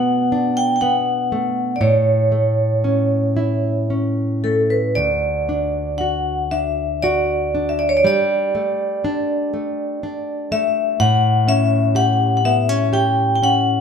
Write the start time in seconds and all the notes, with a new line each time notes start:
Already playing: B2 A3 B3 F#5
0.32 D4
0.57 G5
0.76 G5
0.81 B3 F#5
1.32 A3
1.76 D5
1.81 A2 C#5
2.32 A3
2.84 C#4
3.37 E4
3.90 C#4
4.44 A3 A4
4.70 B4
4.95 D2 D5
5.49 D4
5.98 F#4 F#5
6.51 D4 E5
7.02 F#4 D5
7.55 D4
7.69 E5
7.79 D5
7.89 C#5
7.97 D5
8.04 G3 D5
8.55 A3
9.04 D4
9.54 A3
10.03 D4
10.52 A3 E5
11.00 A2 F#5
11.48 C#4 E5
11.95 G4 F#5
12.37 F#5
12.45 B3 E5
12.69 C#4
12.93 G4 G5
13.35 G5
13.43 C#4 F#5